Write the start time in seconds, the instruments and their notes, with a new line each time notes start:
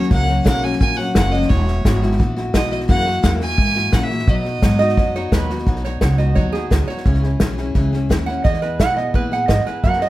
Already playing: upright bass D#2, steel-string acoustic guitar F#3 A#3 C#4 F#4, fiddle C#5
0.02 snare
0.11 upright bass C#2, steel-string acoustic guitar F#2 C#3 F#3 A#3 C#4 F#4, fiddle F#5, kick, snare
0.27 steel-string acoustic guitar F#3 A#3 C#4 F#4, snare
0.45 upright bass B1, steel-string acoustic guitar F#2 C#3 F#3 A#3 C#4 F#4, fiddle F#5, kick, snare, hi-hat pedal
0.62 steel-string acoustic guitar F#3 A#3 C#4 F#4, fiddle G#5, snare
0.72 snare
0.80 upright bass A#1, steel-string acoustic guitar F#3 A#3 C#4 F#4, fiddle G#5, kick, snare
0.97 steel-string acoustic guitar F#3 A#3 C#4 F#4, fiddle F#5, snare
1.15 upright bass F#1, steel-string acoustic guitar F#2 C#3 F#3 A#3 C#4 F#4, fiddle F#5, kick, snare, hi-hat pedal
1.32 steel-string acoustic guitar F#3 A#3 C#4 F#4, fiddle D#5, snare
1.42 snare
1.49 upright bass E1, steel-string acoustic guitar E3 B3 E4 F#4, fiddle C#5, kick, snare
1.67 steel-string acoustic guitar B3 E4 F#4, snare
1.85 upright bass G#1, steel-string acoustic guitar E3 B3 E4 F#4, kick, snare, hi-hat pedal
2.02 steel-string acoustic guitar B3 E4 F#4, snare
2.11 snare
2.18 upright bass A#1, steel-string acoustic guitar E3 B3 E4 F#4, kick, snare
2.36 steel-string acoustic guitar B3 E4 F#4, snare
2.54 upright bass B1, steel-string acoustic guitar E3 B3 E4 F#4, fiddle D#5, kick, snare, hi-hat pedal
2.71 steel-string acoustic guitar B3 E4 F#4, fiddle D#5, snare
2.80 snare
2.88 steel-string acoustic guitar F#2 C#3 E3 A#3 E4 F#4, upright bass F#2, fiddle F#5, kick, snare
3.05 steel-string acoustic guitar E3 A#3 E4 F#4, snare
3.23 upright bass E2, steel-string acoustic guitar F#2 C#3 E3 A#3 E4 F#4, fiddle F#5, kick, snare, hi-hat pedal
3.41 steel-string acoustic guitar E3 A#3 E4 F#4, fiddle G#5, snare
3.49 snare
3.58 upright bass G#2, steel-string acoustic guitar E3 A#3 E4 F#4, kick, snare
3.75 steel-string acoustic guitar E3 A#3 E4 F#4, snare
3.92 steel-string acoustic guitar F#2 C#3 E3 A#3 E4 F#4, upright bass A#2, fiddle F#5, kick, snare, hi-hat pedal
4.04 fiddle E5
4.10 steel-string acoustic guitar E3 A#3 E4 F#4, snare
4.19 snare
4.27 upright bass B2, steel-string acoustic guitar B2 F#3 B3 D#4 F#4, fiddle D#5, kick, snare
4.45 steel-string acoustic guitar B3 D#4 F#4, snare
4.62 upright bass G#2, steel-string acoustic guitar B2 F#3 B3 D#4 F#4, kick, snare, hi-hat pedal
4.79 steel-string acoustic guitar B3 D#4 F#4, resonator guitar played with a steel bar D#5, snare
4.89 snare
4.97 upright bass F#2, steel-string acoustic guitar F#3 B3 D#4 F#4, kick, snare
5.15 steel-string acoustic guitar B3 D#4 F#4, resonator guitar played with a steel bar C#5, snare
5.32 upright bass D#2, steel-string acoustic guitar B2 F#3 B3 D#4 F#4, resonator guitar played with a steel bar B4, kick, snare, hi-hat pedal
5.50 steel-string acoustic guitar B3 D#4 F#4, snare
5.58 snare
5.67 upright bass B1, steel-string acoustic guitar B2 F#3 B3 D#4 F#4, kick, snare
5.76 snare
5.84 steel-string acoustic guitar B3 D#4 F#4, resonator guitar played with a steel bar C#5, snare
6.01 upright bass C#2, steel-string acoustic guitar F#3 B3 D#4 F#4, resonator guitar played with a steel bar C#5, kick, snare, hi-hat pedal
6.18 steel-string acoustic guitar B3 D#4 F#4, resonator guitar played with a steel bar D#5, snare
6.35 upright bass D#2, steel-string acoustic guitar B2 F#3 B3 D#4 F#4, resonator guitar played with a steel bar C#5, kick, snare
6.52 steel-string acoustic guitar B3 D#4 F#4, resonator guitar played with a steel bar G#4, snare
6.71 upright bass D2, steel-string acoustic guitar F#3 B3 D#4 F#4, kick, snare, hi-hat pedal
6.88 steel-string acoustic guitar B3 D#4 F#4, resonator guitar played with a steel bar C#5, muted upright bass stroke, snare
6.97 snare
7.05 upright bass C#2, steel-string acoustic guitar C#3 E3 C#4 E4 G#4, kick, snare
7.14 snare
7.23 steel-string acoustic guitar C#4 E4 G#4, snare
7.40 upright bass B1, steel-string acoustic guitar E3 C#4 E4 G#4, kick, snare, hi-hat pedal
7.58 steel-string acoustic guitar C#4 E4 G#4, snare
7.75 upright bass C#2, steel-string acoustic guitar C#3 E3 C#4 E4 G#4, kick, snare
7.92 steel-string acoustic guitar C#4 E4 G#4, snare
8.09 upright bass D#2, steel-string acoustic guitar E3 C#4 E4 G#4, kick, snare, hi-hat pedal
8.26 steel-string acoustic guitar C#4 E4 G#4, resonator guitar played with a steel bar F#5, snare
8.44 upright bass E2, steel-string acoustic guitar E3 B3 E4 G#4, resonator guitar played with a steel bar D#5, kick, snare
8.53 snare
8.62 steel-string acoustic guitar B3 E4 G#4, resonator guitar played with a steel bar B4, snare
8.79 upright bass B2, steel-string acoustic guitar E3 B3 E4 G#4, resonator guitar played with a steel bar F#5, kick, snare, hi-hat pedal
8.96 steel-string acoustic guitar B3 E4 G#4, resonator guitar played with a steel bar D#5, snare
9.14 upright bass A#2, steel-string acoustic guitar E3 B3 E4 G#4, resonator guitar played with a steel bar B4, kick, snare
9.31 steel-string acoustic guitar B3 E4 G#4, resonator guitar played with a steel bar F#5, snare
9.48 upright bass G#2, steel-string acoustic guitar E3 B3 E4 G#4, resonator guitar played with a steel bar D#5, kick, snare, hi-hat pedal
9.66 steel-string acoustic guitar B3 E4 G#4, resonator guitar played with a steel bar B4, muted upright bass stroke, snare
9.84 upright bass F#2, steel-string acoustic guitar F#2 C#3 F#3 A#3 C#4 F#4, resonator guitar played with a steel bar F#5, kick, snare
9.93 snare
10.01 steel-string acoustic guitar F#3 A#3 C#4 F#4, resonator guitar played with a steel bar D#5, snare